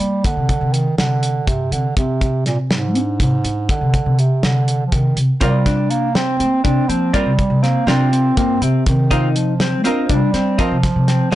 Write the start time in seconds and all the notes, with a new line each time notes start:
Already playing: G3
0.00 A#3, closed hi-hat
0.24 D3, kick, closed hi-hat
0.37 C3
0.49 kick, closed hi-hat
0.61 C3
0.73 D#3, closed hi-hat
0.98 C3 D3, snare, closed hi-hat
1.23 closed hi-hat
1.47 G2 C3, kick, closed hi-hat
1.72 C3 D3, closed hi-hat
1.97 C3, kick, closed hi-hat
2.21 kick, closed hi-hat
2.46 A#2, snare, closed hi-hat
2.71 G#2, snare, closed hi-hat
2.95 D4, closed hi-hat
3.20 G#2 C3, kick, closed hi-hat
3.44 D4, closed hi-hat
3.69 D3, kick, closed hi-hat
3.81 C3
3.94 kick, closed hi-hat
4.06 C3
4.19 C3, closed hi-hat
4.43 C3 D3, snare, closed hi-hat
4.68 closed hi-hat
4.87 F3
4.92 C3 D#3, kick, closed hi-hat
5.16 C3, closed hi-hat
5.41 C3 G3 C4 F4 A#4 D5, kick, closed hi-hat
5.66 D4, kick, snare, closed hi-hat
5.90 A#3, closed hi-hat
6.15 C4, snare, closed hi-hat
6.40 A#3 C4, closed hi-hat
6.64 C3 C4 D4, kick, closed hi-hat
6.89 F3 A#3 C4, closed hi-hat
7.13 G3 C4 F4 A#4 D5, kick, closed hi-hat
7.26 C3
7.39 kick, closed hi-hat
7.50 C3
7.63 A#3 C4, snare, closed hi-hat
7.87 C3 C4 D4 F4 A#4 D5, snare, closed hi-hat
8.12 C4, closed hi-hat
8.37 G2 A#3 C4, kick, closed hi-hat
8.61 C3 C4, closed hi-hat
8.86 C3 D#3, kick, closed hi-hat
9.11 C4 D#4 F4 A#4 D#5, kick, closed hi-hat
9.36 F3, closed hi-hat
9.60 C4, snare, closed hi-hat
9.84 C4 D4 F4 A#4 D#5, closed hi-hat
10.09 C3 G3 D4, kick, closed hi-hat
10.34 C4 D4, snare, closed hi-hat
10.58 F3 C4 F4 A#4 D#5, kick, closed hi-hat
10.71 C3
10.83 kick, snare, closed hi-hat
10.96 C3
11.08 C4, snare, closed hi-hat
11.31 C4